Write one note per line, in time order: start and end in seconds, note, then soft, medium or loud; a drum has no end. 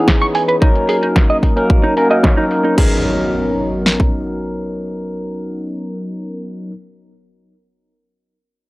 0.00 0.58 E3 medium
0.00 0.58 B3 medium
0.00 0.58 C#4 medium
0.00 0.59 D#4 medium
0.00 0.59 G#4 medium
0.08 kick loud
0.08 snare loud
0.08 closed hi-hat soft
0.22 0.26 C#6 medium
0.22 closed hi-hat soft
0.35 0.42 G#5 medium
0.35 open hi-hat medium
0.48 0.55 B4 medium
0.48 closed hi-hat soft
0.61 1.53 F#3 medium
0.61 1.53 A#3 medium
0.61 1.53 C#4 medium
0.61 0.69 D#4 medium
0.61 1.53 D#4 medium
0.61 1.54 A#4 medium
0.61 kick loud
0.61 closed hi-hat soft
0.75 closed hi-hat soft
0.89 0.96 G#4 medium
0.89 open hi-hat loud
1.03 1.07 D#4 medium
1.03 closed hi-hat soft
1.16 kick loud
1.16 snare loud
1.16 closed hi-hat soft
1.30 1.36 D#5 medium
1.30 closed hi-hat soft
1.43 kick medium
1.43 open hi-hat medium
1.56 1.93 F#3 medium
1.56 1.93 A#3 medium
1.56 1.94 C#4 medium
1.56 1.94 D#4 medium
1.56 1.94 A#4 medium
1.56 closed hi-hat soft
1.70 kick loud
1.70 closed hi-hat soft
1.84 1.94 D#4 medium
1.84 closed hi-hat soft
1.97 2.07 F#3 medium
1.97 2.07 A#3 medium
1.97 2.07 C#4 medium
1.97 2.07 D#4 medium
1.97 2.08 A#4 medium
1.97 open hi-hat loud
2.10 2.34 F#3 medium
2.10 2.34 A#3 medium
2.10 2.34 C#4 medium
2.10 2.34 D#4 medium
2.10 2.34 A#4 medium
2.10 2.17 D#5 medium
2.10 closed hi-hat soft
2.23 kick loud
2.23 snare loud
2.23 closed hi-hat soft
2.37 2.74 F#3 medium
2.37 2.75 A#3 medium
2.37 2.75 C#4 medium
2.37 2.44 D#4 medium
2.37 2.75 D#4 medium
2.37 2.75 A#4 medium
2.37 closed hi-hat soft
2.51 open hi-hat medium
2.64 2.75 D#4 medium
2.64 closed hi-hat soft
2.77 6.70 F#3 medium
2.77 6.71 B3 medium
2.77 6.72 C#4 medium
2.77 6.72 D#4 medium
2.77 3.03 G#4 medium
2.77 6.73 A#4 medium
2.77 kick loud
2.77 crash medium
2.77 impact medium
3.86 snare medium
4.00 kick medium